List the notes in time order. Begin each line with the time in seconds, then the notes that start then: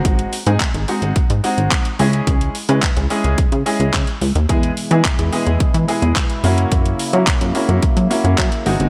Already playing: G#3 C4 D#4 F#4
0.05 G#1, kick, closed hi-hat
0.19 closed hi-hat
0.33 open hi-hat
0.46 G#2 G#3 C4 D#4 G#4, closed hi-hat
0.60 kick, clap, closed hi-hat
0.74 G#1 D#4 G#4, closed hi-hat
0.88 G#3 C4 D#4 F#4, open hi-hat
1.02 G#1, closed hi-hat
1.16 kick, closed hi-hat
1.30 G#2, closed hi-hat
1.44 G#3 C4 D#4 F#4, open hi-hat
1.58 G#1, closed hi-hat
1.71 kick, clap, closed hi-hat
1.85 closed hi-hat
1.99 C#2 G#3 C#4 E4 G#4, open hi-hat
2.13 closed hi-hat
2.27 C#2, kick, closed hi-hat
2.41 closed hi-hat
2.55 open hi-hat
2.69 C#3 G#3 C#4 E4 B4, closed hi-hat
2.83 kick, clap, closed hi-hat
2.96 C#2 E4 G#4, closed hi-hat
3.10 G#3 C#4 E4 G#4, open hi-hat
3.24 C#2, closed hi-hat
3.38 C#3, kick, closed hi-hat
3.52 C#3, closed hi-hat
3.66 G#3 C#4 E4 G#4, open hi-hat
3.80 C#2, closed hi-hat
3.94 C#3, kick, clap, closed hi-hat
4.07 closed hi-hat
4.21 C#2, open hi-hat
4.35 D#2, closed hi-hat
4.49 E2 B2 E3 G#3 B3 E4 G#4, kick, closed hi-hat
4.63 closed hi-hat
4.77 open hi-hat
4.91 E3 G#3 B3 E4 G#4, closed hi-hat
5.05 kick, clap, closed hi-hat
5.18 E2 E4 G#4, closed hi-hat
5.32 G#3 B3 E4 G#4, open hi-hat
5.47 E2, closed hi-hat
5.60 E3, kick, closed hi-hat
5.74 E3, closed hi-hat
5.88 G#3 B3 E4 G#4, open hi-hat
6.02 E2, closed hi-hat
6.16 kick, clap, closed hi-hat
6.30 closed hi-hat
6.44 F#2 C#3 F#3 A#3 C#4 E4 F#4, open hi-hat
6.58 closed hi-hat
6.72 F#2, kick, closed hi-hat
6.86 closed hi-hat
6.99 open hi-hat
7.13 F#3 A#3 C#4 E4 F#4, closed hi-hat
7.27 kick, clap, closed hi-hat
7.41 F#2 E4 F#4, closed hi-hat
7.55 A#3 C#4 E4 F#4, open hi-hat
7.69 F#2, closed hi-hat
7.82 F#3, kick, closed hi-hat
7.97 F#3, closed hi-hat
8.10 A#3 C#4 E4 F#4, open hi-hat
8.24 F#2, closed hi-hat
8.38 F#3, kick, clap, closed hi-hat
8.52 closed hi-hat
8.66 G#1 C3 G#3 C4 D#4 F#4, open hi-hat
8.80 G1, closed hi-hat